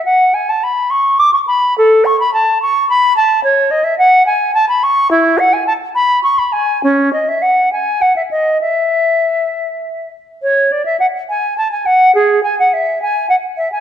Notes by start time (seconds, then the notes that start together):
0.05 F#5
0.34 G#5
0.49 A5
0.63 B5
0.90 C#6
1.19 D6
1.33 C#6
1.47 B5
1.78 A4
2.05 C#6
2.20 B5
2.33 A5
2.62 C#6
2.89 B5
3.16 A5
3.43 C#5
3.71 D#5
3.84 E5
3.98 F#5
4.26 G#5
4.54 A5
4.68 B5
4.83 C#6
5.11 E4
5.38 F#5
5.53 G#5
5.67 A5
5.95 B5
6.23 C#6
6.38 B5
6.52 G#5
6.83 C#4
7.13 D#5
7.28 E5
7.42 F#5
7.72 G#5
8.01 F#5
8.16 E5
8.31 D#5
8.61 E5
10.42 C#5
10.72 D5
10.85 E5
10.99 F#5
11.29 G#5
11.57 A5
11.71 G#5
11.86 F#5
12.14 G#4
12.43 G#5
12.59 F#5
12.73 E5
13.02 G#5
13.29 F#5
13.57 E5
13.72 G#5